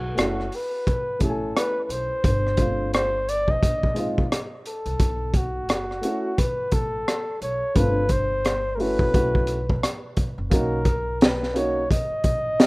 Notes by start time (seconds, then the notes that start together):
Already playing: F#4
0.15 F#1 A3 C#4 E4 F#4, closed hi-hat
0.19 cross-stick
0.40 cross-stick
0.52 B4, open hi-hat
0.87 kick, closed hi-hat
1.19 A1 A3 C#4 E4 G4, kick, closed hi-hat
1.24 A4
1.29 G#5
1.57 B4, cross-stick, closed hi-hat
1.85 B4
1.89 B1 C5, closed hi-hat
2.24 G1, kick, closed hi-hat
2.47 cross-stick
2.57 A3 C4 D4 F4, kick, closed hi-hat
2.94 C5, cross-stick, closed hi-hat
3.29 D5, closed hi-hat
3.48 D#5, kick
3.63 A#1, kick, closed hi-hat
3.83 kick
3.94 G#3 C4 D#4 F4, closed hi-hat
4.18 kick
4.32 cross-stick, closed hi-hat
4.66 A4, closed hi-hat
4.86 C2, closed hi-hat
5.00 B1, kick, closed hi-hat
5.34 F#4, kick, closed hi-hat
5.69 F#1, cross-stick, closed hi-hat
5.91 cross-stick
6.01 A3 C#4 E4 F#4, closed hi-hat
6.38 B4, kick, closed hi-hat
6.72 A1 A4, kick, closed hi-hat
7.08 cross-stick, closed hi-hat
7.41 B1 C#5, closed hi-hat
7.75 G1 A3 C4 D4 F4 B4, kick, closed hi-hat
8.09 C5, kick, closed hi-hat
8.45 cross-stick, closed hi-hat
8.76 A3 C#4 E4 A#4
8.80 F#4 B4, open hi-hat
8.99 kick
9.11 B1 A3 C#4 E4 F#4, kick, closed hi-hat
9.35 kick
9.47 closed hi-hat
9.70 kick
9.83 cross-stick, closed hi-hat
10.17 kick, closed hi-hat
10.38 F#1
10.50 B1 A#3 C#4 D#4 F#4 A#4, kick, closed hi-hat
10.85 kick, closed hi-hat
11.21 B4, snare, closed hi-hat
11.43 snare
11.53 A#3 C#4 D#4 F#4, closed hi-hat
11.57 C#5
11.91 D#5, kick, closed hi-hat
12.10 muted upright bass stroke
12.24 A#1, kick, closed hi-hat
12.60 snare, closed hi-hat